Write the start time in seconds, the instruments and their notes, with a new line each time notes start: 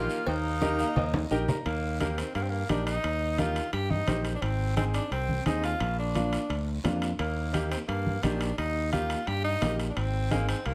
Already playing: tenor saxophone A#3, saxophone section A#3 F4, upright piano D#4 G4 A#4
0.10 short guiro
0.27 fingered electric bass D#2, tenor saxophone A#3, saxophone section A#3 D#4, cowbell, high conga, long guiro
0.61 upright piano D#4 G4 A#4, high conga, short guiro
0.79 upright piano F5, short guiro
0.96 fingered electric bass D#2, upright piano D#5, cowbell, high conga, low conga, long guiro
1.14 high conga, high timbale
1.31 fingered electric bass A#1, upright piano D#4 G4 A#4 G5, short guiro
1.48 upright piano A#5, low conga, low timbale, short guiro
1.66 fingered electric bass D#2, tenor saxophone A#3, high timbale, long guiro
2.00 tenor saxophone A#3, upright piano D#4 G4 A#4, high conga, high timbale, short guiro
2.18 tenor saxophone C4, high timbale, short guiro
2.35 fingered electric bass G2, tenor saxophone A#3, high timbale, long guiro
2.42 tenor saxophone C4
2.49 tenor saxophone A#3
2.69 fingered electric bass A#1, tenor saxophone D4, upright piano D#4 G4 A#4, high conga, high timbale, short guiro
2.87 tenor saxophone D#4, high timbale, short guiro
3.04 fingered electric bass D#2, high timbale, long guiro
3.38 upright piano D#4 G4 A#4, tenor saxophone F4, high conga, high timbale, short guiro
3.56 high timbale, short guiro
3.73 fingered electric bass G2, tenor saxophone G4, high timbale, long guiro
3.90 tenor saxophone D#4, high conga
4.07 fingered electric bass A#1, upright piano D#4 G4 C5, high conga, high timbale, low timbale, short guiro
4.25 high timbale, short guiro
4.35 tenor saxophone D4
4.42 fingered electric bass G#1, tenor saxophone C4, high timbale, long guiro
4.76 upright piano C4 D#4 G#4, tenor saxophone C4, high conga, high timbale, short guiro
4.94 tenor saxophone D4, high timbale, short guiro
5.11 fingered electric bass C2, tenor saxophone C4, high timbale, long guiro
5.29 high conga
5.46 fingered electric bass D#2, upright piano C4 D#4 G#4, tenor saxophone D#4, high conga, high timbale, short guiro
5.64 tenor saxophone F4, high timbale, short guiro
5.80 fingered electric bass A#1, high timbale, long guiro
5.99 tenor saxophone D4
6.15 upright piano A#3 D4 F4, high conga, high timbale, short guiro
6.33 high timbale, short guiro
6.50 fingered electric bass D2, high timbale, long guiro
6.84 fingered electric bass F2, upright piano A#3 D4 F4, high conga, high timbale, low timbale, short guiro
7.02 high timbale, short guiro
7.19 fingered electric bass D#2, tenor saxophone A#3, high timbale, long guiro
7.53 upright piano A#3 D#4 G4, tenor saxophone A#3, high conga, high timbale, short guiro
7.71 tenor saxophone C4, high timbale, short guiro
7.88 fingered electric bass G2, tenor saxophone A#3, high timbale, long guiro
8.06 high conga
8.23 fingered electric bass A#1, upright piano A#3 D#4 G4, tenor saxophone D4, high conga, high timbale, short guiro
8.41 high timbale, short guiro
8.58 fingered electric bass D#2, tenor saxophone D#4, high timbale, long guiro
8.92 upright piano A#3 D#4 G4, tenor saxophone F4, high conga, high timbale, short guiro
9.10 high timbale, short guiro
9.27 fingered electric bass G2, tenor saxophone G4, high timbale, long guiro
9.44 tenor saxophone D#4
9.61 fingered electric bass A#1, upright piano A#3 D#4 G4, high conga, high timbale, low timbale, short guiro
9.79 high timbale, short guiro
9.89 tenor saxophone D4
9.96 fingered electric bass G#1, tenor saxophone C4, high timbale, long guiro
10.30 tenor saxophone A#3, upright piano C4 D#4 G#4, high conga, high timbale, short guiro
10.48 tenor saxophone C4, high timbale, short guiro
10.66 fingered electric bass C2, tenor saxophone A#3, high timbale, long guiro